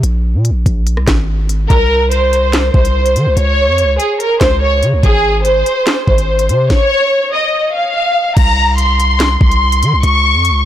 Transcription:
0.03 0.36 A#1 loud
0.03 closed hi-hat medium
0.35 0.52 A#2 loud
0.45 closed hi-hat medium
0.50 0.65 A#1 medium
0.66 0.99 A#1 loud
0.66 kick medium
0.66 closed hi-hat medium
0.87 closed hi-hat medium
0.97 1.07 C2 loud
0.97 cross-stick medium
1.08 1.68 G#1 loud
1.08 kick loud
1.08 cross-stick medium
1.08 snare loud
1.08 clap medium
1.08 closed hi-hat medium
1.49 closed hi-hat medium
1.70 2.70 C2 loud
1.70 2.09 A#4 loud
1.70 kick loud
1.70 closed hi-hat medium
2.12 2.70 C5 medium
2.12 closed hi-hat medium
2.33 closed hi-hat medium
2.53 snare loud
2.53 clap loud
2.53 closed hi-hat medium
2.74 3.17 C2 loud
2.74 3.33 C5 medium
2.74 kick loud
2.85 closed hi-hat medium
3.06 closed hi-hat medium
3.16 3.28 D#3 loud
3.16 closed hi-hat medium
3.26 3.36 C2 loud
3.37 3.69 C#2 loud
3.37 3.96 C#5 loud
3.37 closed hi-hat medium
3.68 3.85 F2 loud
3.78 closed hi-hat medium
3.84 3.98 C#2 medium
3.98 4.17 G#4 medium
3.98 closed hi-hat medium
4.20 4.38 A#4 medium
4.20 closed hi-hat medium
4.41 4.84 C#2 loud
4.41 4.59 C5 medium
4.41 kick loud
4.41 snare loud
4.41 clap loud
4.41 closed hi-hat medium
4.61 4.80 C#5 loud
4.83 4.95 C#3 loud
4.83 closed hi-hat medium
4.93 5.03 C#2 loud
5.03 5.63 G#1 loud
5.03 5.43 G#4 loud
5.03 kick loud
5.03 closed hi-hat medium
5.45 6.04 C5 loud
5.45 closed hi-hat medium
5.66 closed hi-hat medium
5.87 snare loud
5.87 clap loud
5.87 closed hi-hat medium
6.07 6.51 G#1 loud
6.07 6.66 C5 medium
6.07 kick loud
6.18 closed hi-hat medium
6.39 closed hi-hat medium
6.49 6.69 C3 loud
6.49 closed hi-hat medium
6.70 7.29 C#5 loud
6.70 kick loud
6.70 snare medium
7.33 7.72 D#5 medium
7.74 8.33 F5 medium
8.37 9.37 C2 loud
8.37 8.76 A#5 loud
8.37 kick loud
8.37 closed hi-hat medium
8.37 crash loud
8.78 9.37 C6 medium
8.78 closed hi-hat medium
9.00 closed hi-hat medium
9.20 snare loud
9.20 clap loud
9.20 closed hi-hat medium
9.41 9.84 C2 loud
9.41 10.00 C6 medium
9.41 kick loud
9.51 closed hi-hat medium
9.72 closed hi-hat medium
9.83 9.94 D#3 loud
9.83 closed hi-hat medium
9.93 10.03 C2 loud
10.03 10.36 C#2 loud
10.03 10.62 C#6 loud
10.03 closed hi-hat medium
10.35 10.52 F2 loud
10.45 closed hi-hat medium
10.50 10.65 C#2 loud

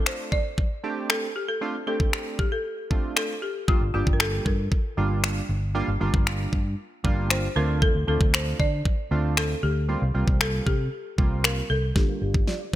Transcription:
0.00 0.38 A3 medium
0.00 0.38 C4 medium
0.00 0.38 D4 medium
0.00 0.38 F4 medium
0.06 0.33 C5 loud
0.06 finger snap loud
0.32 1.06 D5 loud
0.32 kick medium
0.58 kick medium
0.84 1.27 A3 medium
0.84 1.27 C4 medium
0.84 1.27 D4 medium
0.84 1.27 G4 medium
1.10 1.36 A4 medium
1.10 finger snap loud
1.36 1.48 G4 medium
1.48 1.86 A4 loud
1.61 1.76 A3 medium
1.61 1.76 C4 medium
1.61 1.76 D4 medium
1.61 1.76 F4 medium
1.87 2.45 A3 medium
1.87 2.45 C4 medium
1.87 2.45 D4 medium
1.87 2.45 G4 medium
1.87 2.35 A4 loud
2.00 kick medium
2.13 finger snap loud
2.39 2.52 G4 medium
2.39 kick medium
2.52 3.15 A4 medium
2.90 3.34 A3 medium
2.90 3.34 C4 medium
2.90 3.34 D4 medium
2.90 3.34 F4 medium
2.90 kick medium
3.16 3.28 A4 medium
3.16 finger snap loud
3.42 3.69 G4 medium
3.68 3.82 G3 medium
3.68 3.83 A#3 medium
3.68 3.83 D4 medium
3.68 3.80 F4 medium
3.68 3.83 F4 medium
3.68 kick loud
3.81 3.92 G1 medium
3.94 4.04 G1 medium
3.94 4.52 G3 medium
3.94 4.52 A#3 medium
3.94 4.52 D4 medium
3.94 4.14 F4 medium
3.94 4.52 G4 medium
4.07 4.39 G1 medium
4.07 kick medium
4.13 4.20 A#4 medium
4.20 4.46 A4 medium
4.20 finger snap loud
4.45 4.67 G2 medium
4.45 5.45 A#4 medium
4.45 kick medium
4.72 kick medium
4.97 5.40 G1 medium
4.97 5.41 G3 medium
4.97 5.41 A#3 medium
4.97 5.41 D4 medium
4.97 5.41 F4 medium
5.24 finger snap loud
5.49 5.81 G1 medium
5.75 5.89 G3 medium
5.75 5.89 A#3 medium
5.75 5.89 D4 medium
5.75 5.90 F4 loud
5.88 5.99 G1 medium
6.00 6.11 G1 medium
6.00 6.58 G3 medium
6.00 6.59 A#3 medium
6.00 6.59 D4 medium
6.00 6.59 F4 medium
6.14 6.45 G1 medium
6.14 kick medium
6.27 finger snap loud
6.53 6.74 G2 medium
6.53 kick medium
7.04 7.47 G1 loud
7.04 7.47 G3 medium
7.04 7.48 A#3 medium
7.04 7.48 D4 medium
7.04 7.48 F4 loud
7.04 kick medium
7.30 7.57 C5 medium
7.30 finger snap loud
7.56 7.88 D2 medium
7.56 7.97 A3 medium
7.56 7.97 C4 medium
7.56 7.97 D4 medium
7.56 7.98 F4 medium
7.56 7.83 A#4 medium
7.82 8.07 A4 medium
7.82 kick loud
7.95 8.05 D2 medium
8.07 8.18 D2 medium
8.07 8.65 A3 medium
8.07 8.65 C4 medium
8.07 8.66 D4 medium
8.07 8.66 F4 medium
8.07 8.32 A4 medium
8.21 8.52 D2 medium
8.21 kick medium
8.34 8.60 C5 medium
8.34 finger snap loud
8.60 8.81 D3 loud
8.60 9.33 D5 loud
8.60 kick medium
8.85 kick medium
9.11 9.53 D2 medium
9.11 9.54 A3 medium
9.11 9.54 C4 medium
9.11 9.55 D4 medium
9.11 9.55 F4 medium
9.37 9.64 A4 medium
9.37 finger snap loud
9.63 9.95 D2 medium
9.63 10.37 G4 medium
9.89 10.03 G3 medium
9.89 10.03 A#3 medium
9.89 10.03 C4 medium
9.89 10.03 F4 medium
10.02 10.12 C2 medium
10.14 10.25 C2 medium
10.14 10.72 G3 medium
10.14 10.72 A#3 medium
10.14 10.72 C4 medium
10.14 10.73 F4 medium
10.28 10.59 C2 medium
10.28 kick medium
10.41 10.52 A4 medium
10.41 finger snap loud
10.66 10.88 C3 loud
10.66 11.40 G4 medium
10.66 kick medium
11.18 11.60 C2 loud
11.18 11.61 G3 medium
11.18 11.61 A#3 medium
11.18 11.62 C4 medium
11.18 11.62 F4 medium
11.18 kick medium
11.44 11.71 A#4 loud
11.44 finger snap loud
11.70 11.91 C2 medium
11.70 11.97 A4 medium
11.96 12.08 D3 medium
11.96 12.53 G3 medium
11.96 12.53 A#3 medium
11.96 12.54 D4 medium
11.96 12.54 F4 medium
11.96 12.07 G4 medium
11.96 kick loud
11.96 snare soft
12.09 12.21 A#3 medium
12.22 12.43 G1 medium
12.22 12.48 G4 medium
12.34 kick medium
12.47 12.60 F4 medium
12.47 12.74 D5 loud
12.47 snare medium
12.61 12.73 D5 medium

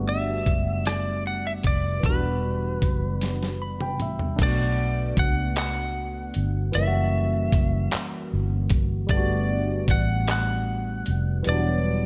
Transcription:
0.00 0.43 G1 medium
0.00 1.98 G3 medium
0.00 1.99 A3 medium
0.00 2.00 B3 medium
0.00 2.02 D4 medium
0.00 2.02 F#4 medium
0.09 0.86 E5 medium
0.46 1.61 F#1 medium
0.46 kick medium
0.46 closed hi-hat medium
0.85 1.23 D5 medium
0.85 cross-stick medium
0.85 closed hi-hat medium
1.27 1.46 F#5 medium
1.47 1.52 E5 medium
1.63 2.00 F1 medium
1.63 2.06 D5 medium
1.63 kick medium
1.63 closed hi-hat soft
2.00 4.33 E3 soft
2.00 2.10 F#3 soft
2.00 kick loud
2.00 closed hi-hat medium
2.04 2.78 E1 medium
2.04 4.36 B3 soft
2.04 4.35 D4 soft
2.04 3.97 B4 medium
2.09 4.38 G3 soft
2.09 4.38 F#4 medium
2.82 4.01 F#1 medium
2.82 kick medium
2.82 closed hi-hat medium
3.21 snare soft
3.21 closed hi-hat medium
3.43 snare soft
3.62 3.79 B5 medium
3.81 3.99 G5 medium
3.81 mid tom medium
4.00 4.36 C2 medium
4.00 4.37 E5 medium
4.00 closed hi-hat soft
4.00 mid tom medium
4.19 floor tom medium
4.36 5.14 B1 medium
4.36 6.70 A3 medium
4.36 6.69 D4 medium
4.36 kick medium
4.36 closed hi-hat medium
4.36 crash medium
4.41 6.71 B3 soft
4.41 5.15 D5 medium
4.46 6.74 F#4 medium
5.17 6.31 C#2 medium
5.17 5.55 F#5 medium
5.17 kick medium
5.17 closed hi-hat medium
5.56 6.71 F#5 loud
5.56 clap loud
5.56 closed hi-hat medium
6.34 6.71 G1 medium
6.34 closed hi-hat medium
6.72 7.49 F#1 loud
6.72 9.04 E3 medium
6.72 9.06 G3 soft
6.72 8.28 E5 medium
6.72 closed hi-hat medium
6.76 9.07 A#3 medium
6.76 9.08 C#4 soft
6.82 6.84 E4 medium
6.87 9.12 F#4 medium
7.52 7.88 F#1 medium
7.52 kick medium
7.52 closed hi-hat medium
7.91 muted fingered electric bass stroke soft
7.91 clap loud
7.91 closed hi-hat medium
8.33 9.07 G1 medium
8.70 kick medium
8.70 closed hi-hat medium
9.07 9.84 G1 loud
9.07 11.40 G3 medium
9.07 11.41 A3 medium
9.07 9.85 D5 loud
9.07 kick loud
9.07 closed hi-hat medium
9.12 11.42 B3 medium
9.12 11.43 D4 medium
9.17 11.45 F#4 medium
9.88 11.02 A1 medium
9.88 10.30 F#5 loud
9.88 kick medium
9.88 closed hi-hat medium
10.28 11.50 F#5 loud
10.28 clap loud
10.28 closed hi-hat medium
11.06 11.42 F1 medium
11.06 closed hi-hat medium
11.43 12.06 E3 medium
11.43 12.06 G3 soft
11.43 closed hi-hat medium
11.47 12.06 E1 medium
11.47 12.06 B3 medium
11.47 12.06 D4 medium
11.47 12.06 D5 medium
11.52 12.06 F#3 medium

